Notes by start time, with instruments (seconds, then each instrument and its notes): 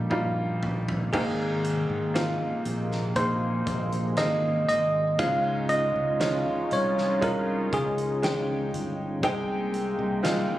Already playing: fingered electric bass A#1, upright piano G3 A#3 D#4 F4 G4
0.10 upright piano G3 A#3 D#4 F4, mid tom
0.63 floor tom
0.89 floor tom
1.13 fingered electric bass G#1, upright piano G#2 D#3 A#3 C4 D#4 G#4, analog synth pad C3 G#3 A#3, tine electric piano G#4, kick, crash
1.64 closed hi-hat
1.89 fingered electric bass G#1
2.14 upright piano A#3 C4 D#4 F4, snare, closed hi-hat
2.65 fingered electric bass A#1, closed hi-hat
2.92 snare
3.16 analog synth pad G#3, upright piano A#3 C4 D#4 G#4, tine electric piano C5, kick, closed hi-hat
3.67 fingered electric bass A#1, kick, closed hi-hat
3.92 closed hi-hat
4.17 fingered electric bass G#1, upright piano A#3 C4 D#4 G#4, tine electric piano D#5, snare, closed hi-hat
4.69 fingered electric bass G#1, tine electric piano D#5, closed hi-hat
5.19 fingered electric bass C#2, upright piano G#2 G#3 C#4 D#4 F4, analog synth pad G#3 C#4 D#4 F4, tine electric piano F5, kick, closed hi-hat
5.69 tine electric piano D#5, closed hi-hat
5.96 fingered electric bass C#2
6.20 upright piano G#3 C#4 D#4 F4, snare, closed hi-hat
6.71 fingered electric bass C2, tine electric piano C#5, closed hi-hat
6.98 snare
7.21 upright piano G#3 C#4 D#4 F4, tine electric piano A#4, kick, closed hi-hat
7.73 fingered electric bass C#2, tine electric piano G#4, kick, closed hi-hat
7.98 closed hi-hat
8.22 upright piano G#3 C#4 D#4 G5, snare, closed hi-hat
8.74 fingered electric bass G1, closed hi-hat
9.23 fingered electric bass C2, upright piano C3 G#3 C4 D#4 G5, analog synth pad C3 G#3 A#3 G5, tine electric piano G#4, kick, closed hi-hat
9.74 closed hi-hat
9.99 fingered electric bass C2
10.23 upright piano G#3 C4 D#4 F4, snare, closed hi-hat